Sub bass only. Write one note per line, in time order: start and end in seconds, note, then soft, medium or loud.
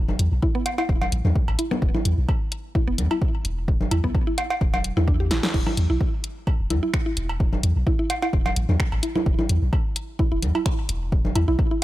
0.00 0.15 E1 medium
0.19 0.29 E2 loud
0.32 0.40 B1 medium
0.89 1.07 E1 medium
1.12 1.22 A1 loud
1.25 1.33 E2 medium
1.48 1.56 A1 medium
1.82 1.92 E1 medium
2.05 2.15 E2 loud
2.18 2.26 B1 medium
2.88 3.00 E1 medium
2.98 3.08 E2 loud
3.45 3.87 E1 medium
3.91 4.01 E2 loud
4.04 4.12 B1 medium
4.61 4.92 E1 medium
4.97 5.32 E2 medium
5.31 5.40 A1 loud
5.54 5.64 E1 loud
5.77 5.87 E2 loud
5.90 5.98 B1 medium
6.60 6.72 E1 medium
6.70 6.80 E2 loud
7.17 7.59 E1 medium
7.63 7.73 E2 loud
7.76 7.84 B1 medium
8.33 8.51 E1 medium
8.56 8.66 A1 medium
8.69 8.77 E2 medium
8.92 9.00 A1 medium
9.26 9.36 E1 medium
9.49 9.59 E2 loud
9.62 9.70 B1 medium
10.32 10.44 E1 medium
10.42 10.52 E2 loud
10.89 11.31 E1 medium
11.36 11.45 E2 loud
11.48 11.56 B1 medium